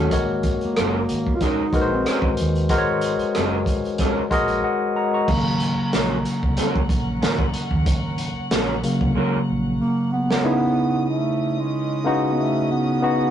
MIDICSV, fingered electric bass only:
0, 0, Header, 1, 3, 480
1, 0, Start_track
1, 0, Tempo, 645161
1, 88, Time_signature, 4, 2, 24, 8
1, 9899, End_track
2, 0, Start_track
2, 0, Title_t, "Fingered electric bass"
2, 0, Program_c, 0, 33
2, 94, Note_on_c, 0, 32, 91
2, 417, Note_off_c, 0, 32, 0
2, 584, Note_on_c, 0, 30, 98
2, 788, Note_off_c, 0, 30, 0
2, 827, Note_on_c, 0, 32, 87
2, 934, Note_off_c, 0, 32, 0
2, 1294, Note_on_c, 0, 34, 91
2, 1502, Note_off_c, 0, 34, 0
2, 1662, Note_on_c, 0, 32, 73
2, 1786, Note_on_c, 0, 39, 77
2, 1798, Note_off_c, 0, 32, 0
2, 1989, Note_off_c, 0, 39, 0
2, 2015, Note_on_c, 0, 32, 98
2, 2338, Note_off_c, 0, 32, 0
2, 2507, Note_on_c, 0, 30, 81
2, 2734, Note_off_c, 0, 30, 0
2, 2734, Note_on_c, 0, 32, 87
2, 2847, Note_off_c, 0, 32, 0
2, 3216, Note_on_c, 0, 34, 83
2, 3423, Note_off_c, 0, 34, 0
2, 3938, Note_on_c, 0, 32, 103
2, 4260, Note_off_c, 0, 32, 0
2, 4427, Note_on_c, 0, 34, 79
2, 4629, Note_off_c, 0, 34, 0
2, 4794, Note_on_c, 0, 36, 73
2, 4882, Note_off_c, 0, 36, 0
2, 5137, Note_on_c, 0, 34, 96
2, 5344, Note_off_c, 0, 34, 0
2, 5386, Note_on_c, 0, 32, 89
2, 5588, Note_off_c, 0, 32, 0
2, 5746, Note_on_c, 0, 39, 89
2, 5838, Note_off_c, 0, 39, 0
2, 5858, Note_on_c, 0, 32, 106
2, 6180, Note_off_c, 0, 32, 0
2, 6347, Note_on_c, 0, 34, 90
2, 6549, Note_off_c, 0, 34, 0
2, 6712, Note_on_c, 0, 36, 93
2, 6802, Note_off_c, 0, 36, 0
2, 7070, Note_on_c, 0, 34, 90
2, 7271, Note_off_c, 0, 34, 0
2, 9899, End_track
3, 0, Start_track
3, 0, Title_t, "Muted fingered electric bass strokes"
3, 476, Note_on_c, 9, 29, 44
3, 551, Note_off_c, 9, 29, 0
3, 1197, Note_on_c, 9, 29, 48
3, 1271, Note_off_c, 9, 29, 0
3, 2400, Note_on_c, 9, 29, 44
3, 2474, Note_off_c, 9, 29, 0
3, 3119, Note_on_c, 9, 29, 51
3, 3193, Note_off_c, 9, 29, 0
3, 4320, Note_on_c, 9, 29, 45
3, 4394, Note_off_c, 9, 29, 0
3, 5036, Note_on_c, 9, 29, 45
3, 5110, Note_off_c, 9, 29, 0
3, 6237, Note_on_c, 9, 29, 47
3, 6312, Note_off_c, 9, 29, 0
3, 6959, Note_on_c, 9, 29, 48
3, 7033, Note_off_c, 9, 29, 0
3, 9899, End_track
0, 0, End_of_file